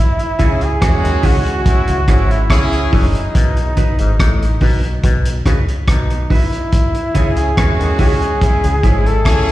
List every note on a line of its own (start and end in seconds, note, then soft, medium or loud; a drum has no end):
0.00 0.65 E4 medium
0.19 closed hi-hat soft
0.39 0.78 C#2 medium
0.39 0.64 C#3 medium
0.39 0.73 C#4 medium
0.39 0.51 E4 medium
0.39 0.73 E4 medium
0.39 0.73 G#4 medium
0.39 0.52 G#4 medium
0.39 0.52 C#5 medium
0.39 kick medium
0.39 closed hi-hat medium
0.61 1.27 G#4 medium
0.61 closed hi-hat soft
0.81 1.02 E2 medium
0.81 0.95 E3 medium
0.81 1.62 G#3 loud
0.81 1.62 C#4 loud
0.81 1.62 F#4 loud
0.81 kick loud
0.81 cross-stick loud
0.81 closed hi-hat medium
1.04 1.23 D#2 medium
1.04 1.16 D#3 medium
1.04 closed hi-hat medium
1.23 1.44 C#2 medium
1.23 1.37 C#3 medium
1.23 1.36 E4 medium
1.23 2.33 F#4 loud
1.23 1.36 G#4 medium
1.23 1.36 C#5 medium
1.23 kick medium
1.23 open hi-hat medium
1.46 closed hi-hat soft
1.66 2.00 G#3 medium
1.66 2.00 C#4 medium
1.66 2.00 E4 medium
1.66 kick loud
1.66 closed hi-hat medium
1.88 2.07 C#2 medium
1.88 2.00 C#3 medium
1.88 closed hi-hat medium
2.08 2.47 G#1 medium
2.08 2.34 G#2 medium
2.08 2.42 G#3 medium
2.08 2.42 C#4 medium
2.08 2.20 E4 medium
2.08 2.42 E4 medium
2.08 2.21 G#4 medium
2.08 2.21 C#5 medium
2.08 kick medium
2.08 cross-stick medium
2.08 closed hi-hat medium
2.31 2.93 E4 medium
2.31 closed hi-hat soft
2.50 2.89 C#2 medium
2.50 2.76 C#3 medium
2.50 3.11 C#4 loud
2.50 3.11 E4 loud
2.50 3.11 G#4 loud
2.50 kick loud
2.50 cross-stick loud
2.50 closed hi-hat medium
2.73 closed hi-hat medium
2.92 3.13 F#1 medium
2.92 3.06 F#2 medium
2.92 5.43 D#4 medium
2.92 3.05 E4 medium
2.92 3.05 G#4 loud
2.92 3.05 C#5 medium
2.92 kick loud
2.92 open hi-hat medium
3.15 closed hi-hat medium
3.35 3.96 B1 medium
3.35 3.60 B2 medium
3.35 kick loud
3.35 closed hi-hat medium
3.57 closed hi-hat soft
3.77 3.89 D#4 medium
3.77 3.90 F#4 medium
3.77 3.90 B4 medium
3.77 kick medium
3.77 closed hi-hat medium
3.99 4.18 G#1 medium
3.99 4.11 G#2 medium
3.99 closed hi-hat soft
4.20 4.58 A1 medium
4.20 4.45 A2 medium
4.20 kick loud
4.20 cross-stick loud
4.20 closed hi-hat medium
4.42 closed hi-hat medium
4.61 5.00 B1 loud
4.61 4.87 B2 medium
4.61 4.74 D#4 medium
4.61 4.74 F#4 medium
4.61 4.75 B4 medium
4.61 kick medium
4.61 open hi-hat medium
4.84 closed hi-hat soft
5.04 5.43 B1 loud
5.04 5.29 B2 medium
5.04 kick loud
5.04 closed hi-hat medium
5.25 closed hi-hat medium
5.46 5.66 C#2 loud
5.46 5.60 C#3 medium
5.46 5.58 D#4 medium
5.46 5.59 F#4 medium
5.46 5.59 B4 loud
5.46 kick medium
5.46 cross-stick medium
5.46 closed hi-hat medium
5.68 closed hi-hat soft
5.88 6.27 B1 medium
5.88 6.14 B2 medium
5.88 6.33 D#4 medium
5.88 kick loud
5.88 cross-stick loud
5.88 closed hi-hat loud
6.10 closed hi-hat medium
6.30 6.43 D#4 medium
6.30 7.40 E4 medium
6.30 6.43 F#4 medium
6.30 6.43 B4 medium
6.30 kick loud
6.30 open hi-hat medium
6.52 closed hi-hat soft
6.72 kick loud
6.72 closed hi-hat medium
6.95 closed hi-hat soft
7.14 7.54 C#2 medium
7.14 7.40 C#3 medium
7.14 7.49 C#4 medium
7.14 7.27 E4 medium
7.14 7.49 E4 medium
7.14 7.27 G#4 loud
7.14 7.49 G#4 loud
7.14 7.28 C#5 loud
7.14 kick medium
7.14 closed hi-hat medium
7.37 8.00 G#4 medium
7.37 closed hi-hat medium
7.56 7.78 E2 medium
7.56 7.71 E3 medium
7.56 8.37 G#3 medium
7.56 8.37 C#4 loud
7.56 8.38 F#4 loud
7.56 kick loud
7.56 cross-stick loud
7.56 closed hi-hat medium
7.79 7.98 D#2 medium
7.79 7.91 D#3 medium
7.79 closed hi-hat medium
7.98 8.20 C#2 medium
7.98 8.13 C#3 medium
7.98 8.12 E4 medium
7.98 8.12 G#4 medium
7.98 9.08 G#4 loud
7.98 8.12 C#5 medium
7.98 kick medium
7.98 open hi-hat medium
8.22 closed hi-hat soft
8.41 8.75 G#3 medium
8.41 8.75 C#4 medium
8.41 8.75 E4 medium
8.41 kick loud
8.41 closed hi-hat medium
8.64 8.83 C#2 medium
8.64 8.76 C#3 medium
8.64 closed hi-hat medium
8.83 9.23 G#1 medium
8.83 9.09 G#2 medium
8.83 9.17 G#3 medium
8.83 9.17 C#4 medium
8.83 9.17 E4 medium
8.83 8.96 E4 medium
8.83 8.97 G#4 medium
8.83 8.97 C#5 medium
8.83 kick loud
8.83 closed hi-hat medium
9.06 9.52 A4 loud
9.06 closed hi-hat soft
9.25 9.52 C#2 medium
9.25 9.51 C#3 medium
9.25 9.52 C#4 loud
9.25 9.52 E4 loud
9.25 9.52 G#4 loud
9.25 kick loud
9.25 cross-stick loud
9.25 closed hi-hat medium
9.48 closed hi-hat medium